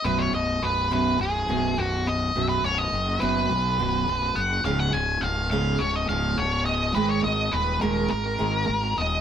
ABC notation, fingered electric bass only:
X:1
M:4/4
L:1/8
Q:1/4=104
K:Blyd
V:1 name="Fingered electric bass" clef=bass
B,,,, B,,,, B,,,,2 B,,,, B,,,, B,,,,2 | B,,,, B,,,, F,,, F,,, B,,, B,,,, B,,,, F,,, | C,,, C,,, C,,,2 C,,, C,,, C,,,2 | G,,, G,,, D,,, D,,, G,,, G,,, G,,, D,,, |]